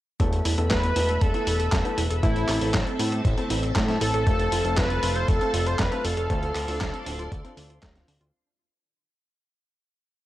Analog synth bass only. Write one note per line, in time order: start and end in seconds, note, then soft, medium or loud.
0.20 0.42 E1 loud
0.45 0.56 E1 medium
0.58 0.69 E1 medium
0.71 0.93 E1 medium
0.96 1.18 E1 medium
1.21 1.33 E1 medium
1.47 1.69 E1 medium
1.72 1.83 E1 loud
1.98 2.09 E1 loud
2.10 2.22 E1 medium
2.23 2.45 A1 loud
2.49 2.60 A1 medium
2.61 2.72 A1 medium
2.74 2.85 A1 loud
2.99 3.21 A2 medium
3.25 3.36 A1 loud
3.50 3.72 A1 medium
3.76 3.98 A2 medium
4.01 4.12 A1 loud
4.14 4.25 A1 medium
4.27 4.49 F1 loud
4.52 4.63 F1 medium
4.65 4.76 F1 loud
4.77 5.00 F1 medium
5.03 5.25 F1 medium
5.28 5.39 F1 medium
5.54 5.76 F1 medium
5.79 5.90 F1 loud
6.05 6.16 F1 loud
6.17 6.28 F1 loud
6.30 6.52 D2 loud
6.55 6.66 D2 medium
6.68 6.79 D2 medium
6.81 6.92 D2 loud
7.06 7.28 D1 medium
7.32 7.43 D2 loud
7.57 7.79 D2 medium
7.83 8.05 D1 medium
8.08 8.19 D2 medium
8.21 8.32 D2 medium